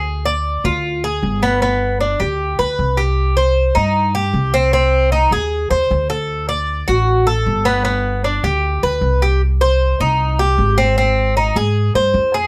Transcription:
X:1
M:4/4
L:1/8
Q:1/4=154
K:Cm
V:1 name="Cuban tres"
A d2 F2 A2 =B, | =B,2 D G2 =B2 G- | G c2 E2 G2 C | C2 E A2 c2 =A- |
=A d2 ^F2 A2 =B, | =B,2 D G2 =B2 G | z c2 E2 G2 C | C2 E A2 c2 A |]
V:2 name="Upright bass" clef=bass
D,,3 D,,3 G,,,2- | G,,,3 D,,2 D,, C,,2- | C,,3 G,,3 C,,2- | C,,3 E,,2 E,, D,,2- |
D,,3 =A,,,3 G,,,2- | G,,,3 D,,2 D,, C,,2- | C,,3 C,,3 A,,,2- | A,,,3 A,,2 G,, F,,2 |]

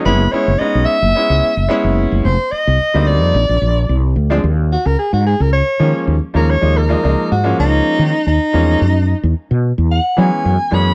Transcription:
X:1
M:4/4
L:1/16
Q:"Swing 16ths" 1/4=110
K:Bbm
V:1 name="Soprano saxophone"
_c2 d2 e2 _f8 z2 | c2 e4 =d8 z2 | [K:Ebm] z2 G B A G A B d4 z2 B d- | d B4 G2 E4- E E4- |
E4 z4 g2 a4 c'2 |]
V:2 name="Grand piano"
[A,_CD_F] z [A,CDF] z [A,CDE]2 z2 [A,CDF]2 z2 [A,CDF]4 | z4 z [=G,B,CE]3 z6 z [F,A,C=D] | [K:Ebm] z8 z2 [F,A,B,D]2 z2 [F,A,B,D] z | [F,A,B,E] z [F,A,B,E] [F,A,B,E]2 z [F,A,B,D]4- [F,A,B,D] z3 [F,A,B,D]2 |
z8 z2 [_F,A,CD]2 z2 [F,A,CD] z |]
V:3 name="Fretless electric bass" clef=bass
G,,,2 z G,,, z _C,, z G,,, z D,, z G,,, z G,,,2 G,,, | F,,, z2 C,, z =D,,2 F,, B,,, B,,, B,,,2 C,,2 D,,2 | [K:Ebm] E,,3 D,, z A,,2 D,,2 z E, z E,, z E,,2 | E,,3 D,, z A,,2 D,,2 z E, z E,, z _F,,2 |
G,,3 _F,, z C,2 F,,2 z G, z G,, z G,,2 |]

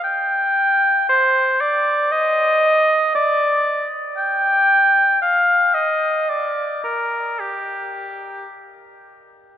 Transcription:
X:1
M:3/4
L:1/16
Q:1/4=57
K:Gm
V:1 name="Oboe"
g4 c2 d2 e4 | d3 z g4 f2 e2 | d2 B2 G4 z4 |]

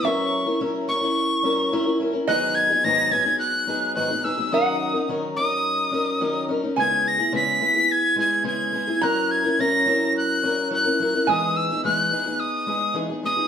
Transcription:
X:1
M:4/4
L:1/16
Q:1/4=107
K:F#mix
V:1 name="Tin whistle"
c'4 z2 c'8 z2 | f'2 g'2 a'2 g'2 f'4 f'2 e'2 | d'4 z2 d'8 z2 | g'2 a'2 b'4 g'2 g'2 g'4 |
f'2 g'2 a'4 f'4 f'4 | d'2 e'2 f'4 d'4 z2 d'2 |]
V:2 name="Resonator guitar played with a steel bar"
e16 | d16 | f12- f2 z2 | g16 |
a16 | g16 |]
V:3 name="Steel-string acoustic guitar"
[F,CEA]3 [CEA] [F,CEA]2 [F,CEA] [CEA]3 [F,CEA]2 [F,CEA] [CEA] [F,CEA] [CEA] | [G,,D,F,B,DG]3 [F,B,DG] [G,,D,F,B,DG]2 [F,B,DG] [F,B,DG]3 [F,B,DG]2 [G,,D,F,B,DG] [F,B,DG] [F,B,DG] [F,B,DG] | [D,F,CDA]3 [CDA] [D,F,CDA]2 [F,CDA]4 [F,CDA]2 [D,F,CDA]2 [F,CDA] [CDA] | [C,G,B,EG]3 [B,EG] [C,G,B,EG]2 [G,B,EG] [B,EG]3 [G,B,EG]2 [C,G,B,EG]2 [G,B,EG] [B,EG] |
[F,CEA]3 [CEA] [F,CEA]2 [F,CEA]4 [F,CEA]2 [F,CEA] [CEA] [F,CEA] [CEA] | [E,G,B,DG]3 [B,DG] [E,G,B,DG]2 [G,B,DG] [B,DG]3 [G,B,DG]2 [E,G,B,DG] [B,DG] [G,B,DG] [B,DG] |]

